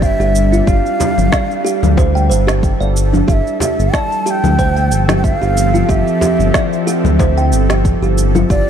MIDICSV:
0, 0, Header, 1, 7, 480
1, 0, Start_track
1, 0, Tempo, 652174
1, 495, Time_signature, 4, 2, 24, 8
1, 6402, End_track
2, 0, Start_track
2, 0, Title_t, "Ney"
2, 0, Program_c, 0, 77
2, 17, Note_on_c, 0, 77, 94
2, 41, Note_on_c, 0, 76, 102
2, 48, Note_off_c, 0, 77, 0
2, 496, Note_on_c, 0, 77, 101
2, 507, Note_off_c, 0, 76, 0
2, 1455, Note_off_c, 0, 77, 0
2, 2417, Note_on_c, 0, 77, 81
2, 2447, Note_on_c, 0, 76, 88
2, 2454, Note_off_c, 0, 77, 0
2, 2639, Note_off_c, 0, 76, 0
2, 2660, Note_on_c, 0, 76, 92
2, 2899, Note_on_c, 0, 81, 107
2, 2910, Note_off_c, 0, 76, 0
2, 3140, Note_off_c, 0, 81, 0
2, 3140, Note_on_c, 0, 81, 102
2, 3169, Note_on_c, 0, 79, 111
2, 3176, Note_off_c, 0, 81, 0
2, 3804, Note_off_c, 0, 79, 0
2, 3808, Note_on_c, 0, 79, 65
2, 3856, Note_on_c, 0, 76, 91
2, 3867, Note_off_c, 0, 79, 0
2, 3937, Note_off_c, 0, 76, 0
2, 3937, Note_on_c, 0, 77, 91
2, 4338, Note_on_c, 0, 76, 81
2, 4349, Note_off_c, 0, 77, 0
2, 5056, Note_off_c, 0, 76, 0
2, 6256, Note_on_c, 0, 74, 103
2, 6402, Note_off_c, 0, 74, 0
2, 6402, End_track
3, 0, Start_track
3, 0, Title_t, "Kalimba"
3, 0, Program_c, 1, 108
3, 0, Note_on_c, 1, 67, 75
3, 134, Note_off_c, 1, 67, 0
3, 147, Note_on_c, 1, 67, 74
3, 374, Note_off_c, 1, 67, 0
3, 385, Note_on_c, 1, 65, 64
3, 483, Note_off_c, 1, 65, 0
3, 494, Note_on_c, 1, 67, 77
3, 619, Note_off_c, 1, 67, 0
3, 735, Note_on_c, 1, 67, 69
3, 810, Note_off_c, 1, 67, 0
3, 972, Note_on_c, 1, 74, 75
3, 1048, Note_off_c, 1, 74, 0
3, 1211, Note_on_c, 1, 67, 73
3, 1338, Note_off_c, 1, 67, 0
3, 1454, Note_on_c, 1, 72, 73
3, 1579, Note_off_c, 1, 72, 0
3, 1584, Note_on_c, 1, 79, 72
3, 1647, Note_off_c, 1, 79, 0
3, 1690, Note_on_c, 1, 72, 65
3, 1817, Note_off_c, 1, 72, 0
3, 1820, Note_on_c, 1, 67, 73
3, 1926, Note_off_c, 1, 67, 0
3, 2064, Note_on_c, 1, 74, 68
3, 2168, Note_off_c, 1, 74, 0
3, 2303, Note_on_c, 1, 62, 60
3, 2408, Note_off_c, 1, 62, 0
3, 2412, Note_on_c, 1, 67, 75
3, 2538, Note_off_c, 1, 67, 0
3, 2655, Note_on_c, 1, 67, 68
3, 2730, Note_off_c, 1, 67, 0
3, 2896, Note_on_c, 1, 74, 77
3, 2970, Note_off_c, 1, 74, 0
3, 3135, Note_on_c, 1, 67, 74
3, 3260, Note_off_c, 1, 67, 0
3, 3376, Note_on_c, 1, 72, 75
3, 3500, Note_off_c, 1, 72, 0
3, 3507, Note_on_c, 1, 79, 65
3, 3568, Note_off_c, 1, 79, 0
3, 3748, Note_on_c, 1, 67, 73
3, 3974, Note_off_c, 1, 67, 0
3, 3986, Note_on_c, 1, 67, 68
3, 4213, Note_off_c, 1, 67, 0
3, 4224, Note_on_c, 1, 65, 63
3, 4323, Note_off_c, 1, 65, 0
3, 4333, Note_on_c, 1, 67, 78
3, 4459, Note_off_c, 1, 67, 0
3, 4572, Note_on_c, 1, 67, 69
3, 4648, Note_off_c, 1, 67, 0
3, 4814, Note_on_c, 1, 74, 78
3, 4890, Note_off_c, 1, 74, 0
3, 5057, Note_on_c, 1, 67, 75
3, 5181, Note_off_c, 1, 67, 0
3, 5297, Note_on_c, 1, 72, 70
3, 5421, Note_off_c, 1, 72, 0
3, 5428, Note_on_c, 1, 79, 69
3, 5489, Note_off_c, 1, 79, 0
3, 5668, Note_on_c, 1, 67, 69
3, 5894, Note_off_c, 1, 67, 0
3, 5906, Note_on_c, 1, 67, 72
3, 6133, Note_off_c, 1, 67, 0
3, 6147, Note_on_c, 1, 65, 68
3, 6244, Note_off_c, 1, 65, 0
3, 6257, Note_on_c, 1, 67, 81
3, 6381, Note_off_c, 1, 67, 0
3, 6402, End_track
4, 0, Start_track
4, 0, Title_t, "Synth drone"
4, 0, Program_c, 2, 95
4, 0, Note_on_c, 2, 55, 74
4, 0, Note_on_c, 2, 60, 84
4, 0, Note_on_c, 2, 62, 75
4, 0, Note_on_c, 2, 69, 79
4, 0, Note_on_c, 2, 74, 73
4, 0, Note_on_c, 2, 76, 69
4, 102, Note_off_c, 2, 74, 0
4, 118, Note_off_c, 2, 76, 0
4, 119, Note_off_c, 2, 60, 0
4, 2415, Note_off_c, 2, 55, 0
4, 2422, Note_on_c, 2, 53, 84
4, 2819, Note_on_c, 2, 67, 76
4, 3031, Note_on_c, 2, 60, 83
4, 3807, Note_off_c, 2, 62, 0
4, 6258, Note_off_c, 2, 53, 0
4, 6402, Note_off_c, 2, 60, 0
4, 6402, Note_off_c, 2, 67, 0
4, 6402, Note_off_c, 2, 69, 0
4, 6402, End_track
5, 0, Start_track
5, 0, Title_t, "Analog synth bass"
5, 0, Program_c, 3, 38
5, 0, Note_on_c, 3, 31, 81
5, 95, Note_off_c, 3, 31, 0
5, 146, Note_on_c, 3, 31, 102
5, 452, Note_off_c, 3, 31, 0
5, 496, Note_on_c, 3, 31, 92
5, 595, Note_off_c, 3, 31, 0
5, 866, Note_on_c, 3, 31, 88
5, 948, Note_off_c, 3, 31, 0
5, 1347, Note_on_c, 3, 38, 100
5, 1694, Note_on_c, 3, 31, 78
5, 1705, Note_off_c, 3, 38, 0
5, 2015, Note_off_c, 3, 31, 0
5, 2068, Note_on_c, 3, 31, 96
5, 2373, Note_off_c, 3, 31, 0
5, 2416, Note_on_c, 3, 31, 91
5, 2515, Note_off_c, 3, 31, 0
5, 2786, Note_on_c, 3, 31, 89
5, 2868, Note_off_c, 3, 31, 0
5, 3266, Note_on_c, 3, 38, 90
5, 3613, Note_on_c, 3, 31, 81
5, 3624, Note_off_c, 3, 38, 0
5, 3934, Note_off_c, 3, 31, 0
5, 3986, Note_on_c, 3, 31, 101
5, 4292, Note_off_c, 3, 31, 0
5, 4336, Note_on_c, 3, 31, 96
5, 4435, Note_off_c, 3, 31, 0
5, 4705, Note_on_c, 3, 31, 90
5, 4788, Note_off_c, 3, 31, 0
5, 5183, Note_on_c, 3, 38, 89
5, 5535, Note_on_c, 3, 31, 80
5, 5546, Note_off_c, 3, 38, 0
5, 5855, Note_off_c, 3, 31, 0
5, 5904, Note_on_c, 3, 31, 100
5, 6211, Note_off_c, 3, 31, 0
5, 6257, Note_on_c, 3, 31, 90
5, 6355, Note_off_c, 3, 31, 0
5, 6402, End_track
6, 0, Start_track
6, 0, Title_t, "Frame drum"
6, 739, Note_on_c, 9, 64, 83
6, 812, Note_off_c, 9, 64, 0
6, 1452, Note_on_c, 9, 64, 75
6, 1526, Note_off_c, 9, 64, 0
6, 2651, Note_on_c, 9, 64, 81
6, 2725, Note_off_c, 9, 64, 0
6, 4573, Note_on_c, 9, 64, 80
6, 4646, Note_off_c, 9, 64, 0
6, 5294, Note_on_c, 9, 64, 86
6, 5368, Note_off_c, 9, 64, 0
6, 6402, End_track
7, 0, Start_track
7, 0, Title_t, "Drums"
7, 16, Note_on_c, 9, 36, 104
7, 20, Note_on_c, 9, 82, 45
7, 90, Note_off_c, 9, 36, 0
7, 94, Note_off_c, 9, 82, 0
7, 152, Note_on_c, 9, 82, 22
7, 226, Note_off_c, 9, 82, 0
7, 260, Note_on_c, 9, 82, 79
7, 334, Note_off_c, 9, 82, 0
7, 393, Note_on_c, 9, 82, 33
7, 466, Note_off_c, 9, 82, 0
7, 496, Note_on_c, 9, 36, 93
7, 500, Note_on_c, 9, 82, 44
7, 570, Note_off_c, 9, 36, 0
7, 574, Note_off_c, 9, 82, 0
7, 633, Note_on_c, 9, 82, 22
7, 707, Note_off_c, 9, 82, 0
7, 740, Note_on_c, 9, 82, 72
7, 813, Note_off_c, 9, 82, 0
7, 867, Note_on_c, 9, 64, 51
7, 873, Note_on_c, 9, 82, 33
7, 941, Note_off_c, 9, 64, 0
7, 946, Note_off_c, 9, 82, 0
7, 975, Note_on_c, 9, 38, 74
7, 976, Note_on_c, 9, 36, 96
7, 981, Note_on_c, 9, 82, 40
7, 1049, Note_off_c, 9, 36, 0
7, 1049, Note_off_c, 9, 38, 0
7, 1055, Note_off_c, 9, 82, 0
7, 1113, Note_on_c, 9, 82, 21
7, 1186, Note_off_c, 9, 82, 0
7, 1223, Note_on_c, 9, 82, 74
7, 1297, Note_off_c, 9, 82, 0
7, 1347, Note_on_c, 9, 64, 72
7, 1353, Note_on_c, 9, 82, 33
7, 1421, Note_off_c, 9, 64, 0
7, 1426, Note_off_c, 9, 82, 0
7, 1456, Note_on_c, 9, 36, 98
7, 1463, Note_on_c, 9, 82, 43
7, 1530, Note_off_c, 9, 36, 0
7, 1536, Note_off_c, 9, 82, 0
7, 1595, Note_on_c, 9, 82, 22
7, 1668, Note_off_c, 9, 82, 0
7, 1702, Note_on_c, 9, 82, 78
7, 1775, Note_off_c, 9, 82, 0
7, 1827, Note_on_c, 9, 38, 70
7, 1833, Note_on_c, 9, 82, 32
7, 1901, Note_off_c, 9, 38, 0
7, 1907, Note_off_c, 9, 82, 0
7, 1936, Note_on_c, 9, 36, 106
7, 1940, Note_on_c, 9, 82, 42
7, 2010, Note_off_c, 9, 36, 0
7, 2014, Note_off_c, 9, 82, 0
7, 2073, Note_on_c, 9, 82, 21
7, 2146, Note_off_c, 9, 82, 0
7, 2182, Note_on_c, 9, 82, 80
7, 2256, Note_off_c, 9, 82, 0
7, 2308, Note_on_c, 9, 64, 71
7, 2314, Note_on_c, 9, 82, 32
7, 2382, Note_off_c, 9, 64, 0
7, 2388, Note_off_c, 9, 82, 0
7, 2416, Note_on_c, 9, 36, 92
7, 2423, Note_on_c, 9, 82, 40
7, 2489, Note_off_c, 9, 36, 0
7, 2496, Note_off_c, 9, 82, 0
7, 2556, Note_on_c, 9, 82, 21
7, 2629, Note_off_c, 9, 82, 0
7, 2661, Note_on_c, 9, 82, 75
7, 2735, Note_off_c, 9, 82, 0
7, 2794, Note_on_c, 9, 82, 29
7, 2868, Note_off_c, 9, 82, 0
7, 2896, Note_on_c, 9, 36, 97
7, 2897, Note_on_c, 9, 38, 69
7, 2903, Note_on_c, 9, 82, 41
7, 2970, Note_off_c, 9, 36, 0
7, 2971, Note_off_c, 9, 38, 0
7, 2976, Note_off_c, 9, 82, 0
7, 3034, Note_on_c, 9, 82, 21
7, 3107, Note_off_c, 9, 82, 0
7, 3140, Note_on_c, 9, 82, 69
7, 3214, Note_off_c, 9, 82, 0
7, 3266, Note_on_c, 9, 64, 71
7, 3272, Note_on_c, 9, 82, 33
7, 3340, Note_off_c, 9, 64, 0
7, 3346, Note_off_c, 9, 82, 0
7, 3376, Note_on_c, 9, 36, 92
7, 3379, Note_on_c, 9, 82, 42
7, 3450, Note_off_c, 9, 36, 0
7, 3453, Note_off_c, 9, 82, 0
7, 3509, Note_on_c, 9, 82, 21
7, 3582, Note_off_c, 9, 82, 0
7, 3618, Note_on_c, 9, 82, 68
7, 3692, Note_off_c, 9, 82, 0
7, 3745, Note_on_c, 9, 38, 69
7, 3745, Note_on_c, 9, 64, 70
7, 3751, Note_on_c, 9, 82, 31
7, 3819, Note_off_c, 9, 38, 0
7, 3819, Note_off_c, 9, 64, 0
7, 3824, Note_off_c, 9, 82, 0
7, 3856, Note_on_c, 9, 36, 104
7, 3861, Note_on_c, 9, 82, 43
7, 3930, Note_off_c, 9, 36, 0
7, 3934, Note_off_c, 9, 82, 0
7, 3993, Note_on_c, 9, 82, 21
7, 4066, Note_off_c, 9, 82, 0
7, 4101, Note_on_c, 9, 82, 74
7, 4175, Note_off_c, 9, 82, 0
7, 4232, Note_on_c, 9, 82, 32
7, 4306, Note_off_c, 9, 82, 0
7, 4336, Note_on_c, 9, 36, 85
7, 4340, Note_on_c, 9, 82, 40
7, 4410, Note_off_c, 9, 36, 0
7, 4413, Note_off_c, 9, 82, 0
7, 4472, Note_on_c, 9, 82, 20
7, 4545, Note_off_c, 9, 82, 0
7, 4578, Note_on_c, 9, 82, 70
7, 4652, Note_off_c, 9, 82, 0
7, 4711, Note_on_c, 9, 82, 29
7, 4785, Note_off_c, 9, 82, 0
7, 4815, Note_on_c, 9, 38, 71
7, 4817, Note_on_c, 9, 36, 94
7, 4821, Note_on_c, 9, 82, 39
7, 4889, Note_off_c, 9, 38, 0
7, 4890, Note_off_c, 9, 36, 0
7, 4895, Note_off_c, 9, 82, 0
7, 4952, Note_on_c, 9, 82, 21
7, 5026, Note_off_c, 9, 82, 0
7, 5060, Note_on_c, 9, 82, 69
7, 5134, Note_off_c, 9, 82, 0
7, 5187, Note_on_c, 9, 64, 81
7, 5193, Note_on_c, 9, 82, 31
7, 5261, Note_off_c, 9, 64, 0
7, 5267, Note_off_c, 9, 82, 0
7, 5297, Note_on_c, 9, 36, 92
7, 5300, Note_on_c, 9, 82, 41
7, 5371, Note_off_c, 9, 36, 0
7, 5374, Note_off_c, 9, 82, 0
7, 5430, Note_on_c, 9, 82, 21
7, 5504, Note_off_c, 9, 82, 0
7, 5538, Note_on_c, 9, 82, 71
7, 5612, Note_off_c, 9, 82, 0
7, 5665, Note_on_c, 9, 38, 65
7, 5671, Note_on_c, 9, 82, 29
7, 5739, Note_off_c, 9, 38, 0
7, 5744, Note_off_c, 9, 82, 0
7, 5777, Note_on_c, 9, 36, 97
7, 5779, Note_on_c, 9, 82, 42
7, 5851, Note_off_c, 9, 36, 0
7, 5852, Note_off_c, 9, 82, 0
7, 5912, Note_on_c, 9, 82, 21
7, 5985, Note_off_c, 9, 82, 0
7, 6020, Note_on_c, 9, 82, 71
7, 6093, Note_off_c, 9, 82, 0
7, 6145, Note_on_c, 9, 64, 75
7, 6151, Note_on_c, 9, 82, 30
7, 6219, Note_off_c, 9, 64, 0
7, 6224, Note_off_c, 9, 82, 0
7, 6257, Note_on_c, 9, 36, 86
7, 6259, Note_on_c, 9, 82, 39
7, 6330, Note_off_c, 9, 36, 0
7, 6333, Note_off_c, 9, 82, 0
7, 6402, End_track
0, 0, End_of_file